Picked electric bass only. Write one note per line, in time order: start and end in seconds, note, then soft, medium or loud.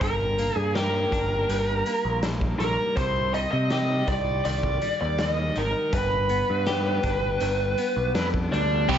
0.01 0.50 G1 medium
0.56 1.05 G2 medium
1.12 1.45 G1 medium
1.49 1.81 G1 medium
2.05 2.53 A#1 medium
2.60 2.76 A#1 medium
2.97 3.46 C2 medium
3.53 4.01 C3 medium
4.08 4.40 C2 medium
4.46 4.78 C2 medium
5.02 5.50 D#2 medium
5.57 5.73 G#1 medium
5.93 6.42 G1 medium
6.50 6.98 G2 medium
7.04 7.36 G1 medium
7.41 7.74 G1 medium
7.96 8.13 B1 medium
8.15 8.49 F2 medium
8.51 8.85 D2 medium